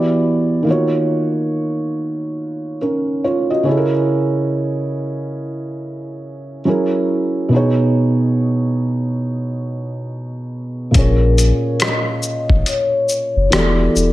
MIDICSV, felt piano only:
0, 0, Header, 1, 2, 480
1, 0, Start_track
1, 0, Key_signature, -5, "minor"
1, 0, Tempo, 857143
1, 372, Time_signature, 4, 2, 24, 8
1, 7911, End_track
2, 0, Start_track
2, 0, Title_t, "Felt piano"
2, 0, Program_c, 0, 0
2, 0, Control_c, 0, 64, 127
2, 0, Note_on_c, 0, 52, 67
2, 0, Note_on_c, 0, 59, 60
2, 0, Note_on_c, 0, 66, 62
2, 0, Note_on_c, 0, 67, 59
2, 0, Note_on_c, 0, 74, 74
2, 350, Note_on_c, 0, 51, 69
2, 362, Note_on_c, 0, 58, 63
2, 367, Note_off_c, 0, 52, 0
2, 370, Note_off_c, 0, 59, 0
2, 373, Note_off_c, 0, 66, 0
2, 373, Note_on_c, 0, 65, 57
2, 375, Note_off_c, 0, 67, 0
2, 378, Note_off_c, 0, 74, 0
2, 381, Control_c, 0, 64, 0
2, 385, Note_on_c, 0, 66, 62
2, 395, Note_on_c, 0, 73, 75
2, 479, Control_c, 0, 64, 127
2, 1550, Note_off_c, 0, 65, 0
2, 1556, Note_off_c, 0, 66, 0
2, 1561, Note_off_c, 0, 73, 0
2, 1576, Note_on_c, 0, 70, 58
2, 1579, Note_on_c, 0, 61, 47
2, 1802, Note_off_c, 0, 70, 0
2, 1804, Note_off_c, 0, 61, 0
2, 1816, Note_on_c, 0, 73, 64
2, 1819, Note_on_c, 0, 65, 54
2, 1954, Note_off_c, 0, 73, 0
2, 1956, Note_off_c, 0, 65, 0
2, 1962, Note_on_c, 0, 75, 57
2, 1965, Note_on_c, 0, 66, 49
2, 2019, Note_off_c, 0, 51, 0
2, 2025, Note_off_c, 0, 58, 0
2, 2033, Note_on_c, 0, 49, 70
2, 2044, Note_on_c, 0, 61, 63
2, 2055, Note_on_c, 0, 64, 63
2, 2061, Control_c, 0, 64, 0
2, 2066, Note_on_c, 0, 68, 62
2, 2076, Note_on_c, 0, 69, 64
2, 2109, Note_off_c, 0, 69, 0
2, 2113, Note_on_c, 0, 70, 77
2, 2145, Control_c, 0, 64, 127
2, 2189, Note_off_c, 0, 75, 0
2, 2190, Note_off_c, 0, 66, 0
2, 3700, Note_off_c, 0, 49, 0
2, 3706, Note_off_c, 0, 61, 0
2, 3711, Note_off_c, 0, 64, 0
2, 3717, Note_off_c, 0, 68, 0
2, 3724, Note_on_c, 0, 54, 67
2, 3729, Note_on_c, 0, 61, 59
2, 3735, Note_on_c, 0, 64, 64
2, 3737, Note_off_c, 0, 70, 0
2, 3739, Control_c, 0, 64, 0
2, 3740, Note_on_c, 0, 68, 61
2, 3745, Note_on_c, 0, 70, 75
2, 3829, Control_c, 0, 64, 127
2, 4192, Note_on_c, 0, 47, 68
2, 4203, Note_on_c, 0, 59, 64
2, 4208, Note_off_c, 0, 54, 0
2, 4210, Note_off_c, 0, 61, 0
2, 4213, Note_off_c, 0, 64, 0
2, 4214, Note_on_c, 0, 63, 65
2, 4216, Note_off_c, 0, 68, 0
2, 4219, Note_off_c, 0, 70, 0
2, 4220, Control_c, 0, 64, 0
2, 4226, Note_on_c, 0, 68, 63
2, 4236, Note_on_c, 0, 73, 76
2, 4301, Control_c, 0, 64, 127
2, 6100, Note_off_c, 0, 47, 0
2, 6105, Note_off_c, 0, 59, 0
2, 6110, Note_on_c, 0, 46, 58
2, 6111, Note_off_c, 0, 63, 0
2, 6116, Note_off_c, 0, 68, 0
2, 6120, Note_on_c, 0, 58, 53
2, 6121, Note_off_c, 0, 73, 0
2, 6131, Note_on_c, 0, 61, 56
2, 6140, Control_c, 0, 64, 0
2, 6141, Note_on_c, 0, 68, 56
2, 6153, Note_on_c, 0, 73, 70
2, 6235, Control_c, 0, 64, 127
2, 7539, Note_off_c, 0, 46, 0
2, 7544, Note_off_c, 0, 58, 0
2, 7549, Note_off_c, 0, 61, 0
2, 7554, Note_off_c, 0, 68, 0
2, 7560, Note_off_c, 0, 73, 0
2, 7562, Note_on_c, 0, 52, 61
2, 7567, Note_on_c, 0, 59, 56
2, 7572, Note_on_c, 0, 66, 55
2, 7578, Note_on_c, 0, 67, 54
2, 7580, Control_c, 0, 64, 0
2, 7583, Note_on_c, 0, 74, 69
2, 7687, Control_c, 0, 64, 127
2, 7911, Note_off_c, 0, 52, 0
2, 7911, Note_off_c, 0, 59, 0
2, 7911, Note_off_c, 0, 66, 0
2, 7911, Note_off_c, 0, 67, 0
2, 7911, Note_off_c, 0, 74, 0
2, 7911, End_track
0, 0, End_of_file